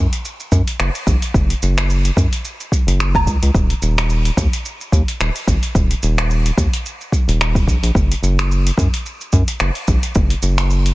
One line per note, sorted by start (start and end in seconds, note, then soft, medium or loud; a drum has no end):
0.13 open hi-hat medium
0.13 shaker soft
0.25 shaker soft
0.40 shaker soft
0.52 0.62 F#2 loud
0.52 kick medium
0.52 shaker medium
0.68 open hi-hat medium
0.68 shaker soft
0.80 0.90 F#1 medium
0.80 finger snap medium
0.80 shaker soft
0.95 open hi-hat soft
0.95 shaker soft
1.07 1.17 A#1 loud
1.07 kick loud
1.07 shaker medium
1.22 open hi-hat medium
1.22 shaker soft
1.34 1.54 F#1 medium
1.34 kick loud
1.34 shaker soft
1.50 open hi-hat soft
1.50 shaker soft
1.63 2.11 F#1 loud
1.63 shaker medium
1.78 finger snap medium
1.78 open hi-hat medium
1.78 shaker soft
1.90 shaker soft
2.05 open hi-hat soft
2.05 shaker soft
2.17 2.27 F#2 loud
2.17 kick loud
2.17 shaker medium
2.33 open hi-hat medium
2.33 shaker soft
2.45 shaker soft
2.60 shaker soft
2.72 kick medium
2.72 shaker medium
2.87 3.26 F#1 loud
2.87 open hi-hat medium
2.87 shaker soft
3.00 finger snap medium
3.00 shaker soft
3.15 kick loud
3.15 open hi-hat soft
3.15 low woodblock medium
3.15 shaker soft
3.27 3.37 C#2 medium
3.27 kick medium
3.27 shaker medium
3.43 3.51 C#2 medium
3.43 open hi-hat soft
3.43 shaker soft
3.54 3.74 D#1 medium
3.54 kick loud
3.54 shaker soft
3.70 open hi-hat soft
3.70 shaker soft
3.82 4.31 D#1 loud
3.82 shaker medium
3.98 finger snap medium
3.98 open hi-hat medium
3.98 shaker soft
4.10 shaker soft
4.25 open hi-hat soft
4.25 shaker soft
4.37 4.47 D#2 loud
4.37 kick loud
4.37 shaker medium
4.53 open hi-hat medium
4.53 shaker soft
4.65 shaker soft
4.81 shaker soft
4.92 5.03 D#2 loud
4.92 kick medium
4.92 shaker medium
5.08 open hi-hat soft
5.08 shaker soft
5.20 5.30 D#1 medium
5.20 finger snap medium
5.20 shaker soft
5.36 open hi-hat soft
5.36 shaker soft
5.48 5.58 G#1 loud
5.48 kick loud
5.48 shaker medium
5.63 open hi-hat medium
5.63 shaker soft
5.75 5.94 D#1 medium
5.75 kick loud
5.75 shaker soft
5.91 open hi-hat soft
5.91 shaker soft
6.03 6.51 D#1 loud
6.03 shaker medium
6.18 finger snap medium
6.18 open hi-hat medium
6.18 shaker soft
6.31 shaker soft
6.46 open hi-hat soft
6.46 shaker soft
6.58 6.68 D#2 loud
6.58 kick loud
6.58 shaker medium
6.73 open hi-hat medium
6.73 shaker soft
6.86 shaker soft
7.01 shaker soft
7.12 kick medium
7.12 shaker medium
7.28 7.67 D#1 loud
7.28 open hi-hat medium
7.28 shaker soft
7.41 finger snap medium
7.41 shaker soft
7.55 kick loud
7.55 open hi-hat soft
7.55 shaker soft
7.67 7.78 A#1 medium
7.67 kick medium
7.67 shaker medium
7.83 7.91 A#1 medium
7.83 open hi-hat medium
7.83 shaker soft
7.95 8.14 F#1 medium
7.95 kick loud
7.95 shaker soft
8.12 open hi-hat soft
8.12 shaker soft
8.23 8.71 F#1 loud
8.23 shaker medium
8.39 finger snap medium
8.39 open hi-hat medium
8.39 shaker soft
8.52 shaker soft
8.67 open hi-hat soft
8.67 shaker soft
8.78 8.88 F#2 loud
8.78 kick loud
8.78 shaker medium
8.94 open hi-hat medium
8.94 shaker soft
9.06 shaker soft
9.21 shaker soft
9.33 9.43 F#2 loud
9.33 kick medium
9.33 shaker medium
9.48 open hi-hat medium
9.48 shaker soft
9.60 9.70 F#1 medium
9.60 finger snap medium
9.60 shaker soft
9.75 open hi-hat soft
9.75 shaker soft
9.88 9.98 A#1 loud
9.88 kick loud
9.88 shaker medium
10.03 open hi-hat medium
10.03 shaker soft
10.15 10.35 F#1 loud
10.15 kick loud
10.15 shaker soft
10.30 open hi-hat soft
10.30 shaker soft
10.43 10.91 F#1 loud
10.43 shaker medium
10.58 finger snap medium
10.58 open hi-hat medium
10.58 shaker soft
10.70 shaker soft
10.86 open hi-hat soft
10.86 shaker soft